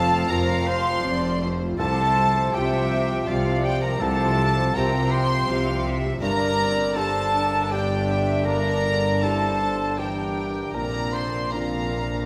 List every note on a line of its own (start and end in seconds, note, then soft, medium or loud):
0.00 0.21 F1 loud
0.00 0.21 F2 medium
0.00 0.28 F2 medium
0.00 0.11 F3 medium
0.00 1.75 F3 medium
0.00 0.11 C4 medium
0.00 1.75 C4 medium
0.00 0.32 A4 medium
0.00 1.05 F5 loud
0.00 0.28 A5 loud
0.00 0.33 A5 loud
0.11 0.30 A3 medium
0.11 0.30 F4 medium
0.29 0.96 F1 medium
0.29 0.96 F2 loud
0.29 0.48 F3 medium
0.29 1.01 C4 medium
0.29 0.48 C4 medium
0.29 1.01 F4 medium
0.29 0.68 A#4 medium
0.29 0.67 A#5 loud
0.29 0.69 A#5 medium
0.49 0.68 A3 medium
0.49 0.68 F4 medium
0.67 0.86 F3 medium
0.67 0.86 C4 medium
0.67 1.41 C5 loud
0.67 1.42 C6 medium
0.67 1.40 C6 loud
0.86 1.05 A3 medium
0.86 1.05 F4 medium
1.04 1.70 F1 loud
1.04 1.70 F2 medium
1.04 1.22 F3 medium
1.04 1.74 C4 medium
1.04 1.22 C4 medium
1.04 1.75 F4 medium
1.04 1.42 D5 medium
1.23 1.42 A3 medium
1.23 1.41 F4 medium
1.41 1.60 F3 medium
1.41 1.60 C4 medium
1.41 1.79 C5 medium
1.61 1.79 A3 medium
1.61 1.79 F4 medium
1.78 2.45 C2 medium
1.78 2.52 C2 medium
1.78 2.45 C3 medium
1.78 6.06 F3 medium
1.78 1.97 G3 medium
1.78 1.97 C4 medium
1.78 6.06 C4 medium
1.78 2.55 A4 loud
1.78 2.53 C5 medium
1.78 2.56 A5 loud
1.78 2.50 A5 loud
1.98 2.17 F3 medium
1.98 2.16 G3 medium
2.17 2.34 G3 medium
2.17 2.36 C4 medium
2.35 2.54 F3 medium
2.35 2.54 G3 medium
2.53 3.20 C2 medium
2.53 3.19 C3 medium
2.53 2.72 G3 medium
2.53 3.24 C4 medium
2.53 2.72 C4 medium
2.53 3.24 F4 medium
2.53 3.29 G4 medium
2.53 3.25 G4 medium
2.53 3.28 E5 medium
2.53 3.28 G5 medium
2.53 3.29 G5 medium
2.73 2.91 F3 medium
2.73 2.90 G3 medium
2.92 3.09 G3 medium
2.92 3.10 C4 medium
3.11 3.29 F3 medium
3.11 3.28 G3 medium
3.27 3.93 C2 medium
3.27 3.93 C3 medium
3.27 3.45 G3 medium
3.27 3.45 C4 medium
3.27 3.98 C4 medium
3.27 3.65 F4 medium
3.27 3.98 F4 medium
3.27 3.98 G4 medium
3.27 4.01 D5 medium
3.27 3.66 F5 medium
3.27 3.65 F5 medium
3.46 3.65 F3 medium
3.46 3.64 G3 medium
3.64 3.83 G3 medium
3.64 3.84 C4 medium
3.64 3.84 G4 medium
3.64 3.85 G5 medium
3.64 3.83 G5 loud
3.83 4.02 F3 medium
3.83 4.02 G3 medium
3.83 4.02 A#4 medium
3.83 4.02 A#5 loud
3.83 4.01 A#5 medium
4.00 4.72 C2 medium
4.00 4.66 C2 medium
4.00 4.66 C3 medium
4.00 4.19 G3 medium
4.00 4.19 C4 medium
4.00 4.76 A4 loud
4.00 4.38 C5 medium
4.00 4.76 A5 medium
4.00 4.75 A5 loud
4.20 4.38 F3 medium
4.20 4.38 G3 medium
4.38 4.56 G3 medium
4.38 4.57 C4 medium
4.38 4.75 A5 medium
4.57 4.75 F3 medium
4.57 4.74 G3 medium
4.74 5.40 C2 medium
4.74 5.39 C3 loud
4.74 4.92 G3 medium
4.74 4.92 C4 medium
4.74 5.45 C4 medium
4.74 5.44 F4 medium
4.74 5.45 G4 medium
4.74 5.12 A#4 medium
4.74 5.49 G5 medium
4.74 5.12 A#5 medium
4.74 5.12 A#5 loud
4.93 5.11 F3 medium
4.93 5.10 G3 medium
5.11 5.29 G3 medium
5.11 5.29 C4 medium
5.11 5.85 C5 loud
5.11 5.85 C6 loud
5.30 5.48 F3 medium
5.30 5.48 G3 medium
5.48 6.14 C2 medium
5.48 6.13 C3 medium
5.48 5.66 G3 medium
5.48 6.18 C4 medium
5.48 5.66 C4 medium
5.48 6.18 F4 medium
5.48 6.18 G4 medium
5.48 5.85 F5 medium
5.67 5.85 F3 medium
5.67 5.85 G3 medium
5.86 6.03 G3 medium
5.86 6.04 C4 medium
5.86 6.23 E5 medium
6.04 6.22 F3 medium
6.04 6.22 G3 medium
6.21 10.70 G1 medium
6.21 10.70 G2 medium
6.21 6.94 G2 medium
6.21 9.94 D3 medium
6.21 10.71 D3 medium
6.21 6.57 D4 medium
6.21 10.71 D4 medium
6.21 6.97 A#4 loud
6.21 6.95 D5 medium
6.21 6.97 A#5 medium
6.21 6.92 A#5 loud
6.61 6.96 C4 medium
6.95 7.67 D4 medium
6.95 8.46 D4 medium
6.95 7.67 G4 medium
6.95 7.72 A4 loud
6.95 7.34 C5 medium
6.95 7.73 A5 medium
6.95 7.72 A5 loud
7.36 7.72 A#4 medium
7.71 8.42 D4 medium
7.71 8.45 G4 medium
7.71 8.42 G4 medium
7.71 8.09 D5 medium
7.71 8.46 G5 medium
7.71 8.47 G5 loud
8.09 8.47 E5 medium
8.45 9.20 G2 medium
8.45 9.22 D4 medium
8.45 9.24 A#4 loud
8.45 9.22 D5 medium
8.45 9.21 A#5 loud
8.45 9.24 A#5 medium
9.23 9.94 D4 medium
9.23 9.61 E4 medium
9.23 9.94 G4 medium
9.23 10.00 A4 medium
9.23 9.99 C5 medium
9.23 10.00 A5 medium
9.23 9.98 A5 loud
9.63 9.98 D4 medium
9.98 10.75 E3 medium
9.98 10.71 D4 medium
9.98 10.73 D4 medium
9.98 10.74 G4 medium
9.98 10.71 G4 soft
9.98 10.75 A#4 medium
9.98 10.75 G5 medium
9.98 10.76 G5 medium
10.74 12.26 A#1 medium
10.74 11.50 A#2 medium
10.74 12.26 A#2 medium
10.74 11.49 C3 medium
10.74 11.48 D3 medium
10.74 11.48 C4 medium
10.74 11.49 D4 medium
10.74 11.15 A#4 medium
10.74 11.51 D5 medium
10.74 11.14 A#5 medium
10.74 11.12 A#5 loud
11.12 11.51 C5 medium
11.12 11.53 C6 medium
11.12 11.52 C6 loud
11.52 12.26 C3 medium
11.52 12.26 D3 medium
11.52 12.26 C4 medium
11.52 12.26 C4 soft
11.52 12.26 D4 medium
11.52 12.26 D4 soft
11.52 12.26 F4 medium
11.52 12.26 A#4 medium
11.52 12.26 F5 medium
11.52 12.26 A#5 medium